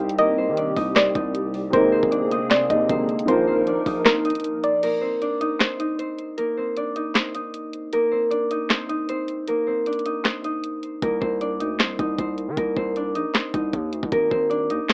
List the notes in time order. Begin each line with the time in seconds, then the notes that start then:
Already playing: C2 C3 D#3 G3 A#3 C4 D#4 G4 A#4 C5 D#5 G5
0.09 closed hi-hat
0.18 A#3 A#4 D#5, closed hi-hat
0.38 C4 C5
0.48 D#3
0.57 D4 D5, closed hi-hat
0.76 C2 D#4 D#5, kick, open hi-hat
0.96 C4 C5 D5, cross-stick, snare, clap, closed hi-hat
1.15 C2 D#4 D#5, kick, closed hi-hat
1.35 closed hi-hat
1.54 open hi-hat
1.70 G#1 C3 G#3 A#3 C4 G#4 A#4 C5, kick, closed hi-hat
1.74 A#3 D#4
1.92 C4 C5
2.03 G#1, kick
2.11 D4 D5, closed hi-hat
2.22 G1
2.31 D#4 D#5, closed hi-hat
2.51 C4 C5 D5, snare, clap, closed hi-hat
2.70 D#2 D#4 D#5, kick, closed hi-hat
2.88 G#1 C3 D3 G#3 A#3 C4 C5, kick, closed hi-hat
3.09 closed hi-hat
3.19 closed hi-hat
3.25 A#1 D#3 F3 A#3 D#4 A#4 C5, closed hi-hat
3.29 A#3 F4
3.47 C4 C5
3.67 D4 D5, closed hi-hat
3.86 A#1 D#4 D#5, kick, open hi-hat
4.05 C4 A#4 C5, cross-stick, snare, clap, closed hi-hat
4.25 D#4 D#5, closed hi-hat
4.30 closed hi-hat
4.35 closed hi-hat
4.40 closed hi-hat
4.44 closed hi-hat
4.64 D5, closed hi-hat
4.83 A#3 A#4, closed hi-hat, crash
5.01 C4 C5
5.22 D4 D5, closed hi-hat
5.41 D#4 D#5, closed hi-hat
5.60 C4 C5, snare, clap, closed hi-hat
5.80 D#4 D#5, closed hi-hat
5.99 C4 C5, closed hi-hat
6.19 closed hi-hat
6.38 A#3 A#4, closed hi-hat
6.57 C4 C5
6.77 D4 D5, closed hi-hat
6.96 D#4 D#5, closed hi-hat
7.15 C4 C5, snare, clap, closed hi-hat
7.35 D#4 D#5, closed hi-hat
7.54 closed hi-hat
7.73 closed hi-hat
7.93 A#3 A#4, closed hi-hat
8.11 C4 C5
8.31 D4 D5, closed hi-hat
8.51 D#4 D#5, closed hi-hat
8.70 C4 C5, snare, clap, closed hi-hat
8.89 D#4 D#5, closed hi-hat
9.09 C4 C5, closed hi-hat
9.28 closed hi-hat
9.48 A#3 A#4, closed hi-hat
9.67 C4 C5
9.86 D4 D5, closed hi-hat
9.93 closed hi-hat
9.99 closed hi-hat
10.06 D#4 D#5, closed hi-hat
10.25 C4 C5, snare, clap, closed hi-hat
10.44 D#4 D#5, closed hi-hat
10.64 closed hi-hat
10.83 closed hi-hat
11.02 C2 A#3 A#4, kick, closed hi-hat
11.21 C2 C4 C5, kick
11.41 D4 D5, closed hi-hat
11.60 D2 D#4 D#5, closed hi-hat
11.80 C2 C4 C5, snare, clap, closed hi-hat
11.99 C2 D#4 D#5, kick, closed hi-hat
12.18 C2 C4 C5, kick, closed hi-hat
12.38 closed hi-hat
12.48 D#3
12.57 C2 A#3 A#4, kick, closed hi-hat
12.77 C2 C4 C5, kick
12.96 D4 D5, closed hi-hat
13.15 A#1 D#4 D#5, closed hi-hat
13.35 C4 C5, snare, clap, closed hi-hat
13.54 C2 D#4 D#5, kick, closed hi-hat
13.73 D#2, kick, closed hi-hat
13.93 D2, closed hi-hat
14.03 C2, kick
14.12 G#1 A#3 A#4, kick, closed hi-hat
14.31 G#1 C4 C5, kick
14.50 D4 D5, closed hi-hat
14.70 D#2 D#4 D#5, closed hi-hat
14.89 C5, snare, clap, closed hi-hat